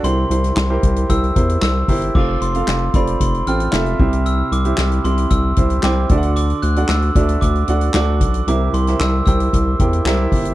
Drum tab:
CC |----------------|x-------------x-|----------------|----------------|
HH |x-xx--xxxxxx--ox|--xx--xxxxxx-x-x|x-xx-xxxx-xx--xx|xxxx-xxxxxxx--xx|
CP |----x-------x---|----x-------x---|----x-------x---|----x-------x---|
SD |---oo-------o---|----o-------o---|----o-------o---|----o-------o---|
BD |------o-o-o---o-|o-----o-o-----o-|--------o-o---o-|------o-o-----o-|

CC |----------------|
HH |x-xx--xxx-xx--ox|
CP |----x-------x---|
SD |---oo-------o---|
BD |------o-o-o---o-|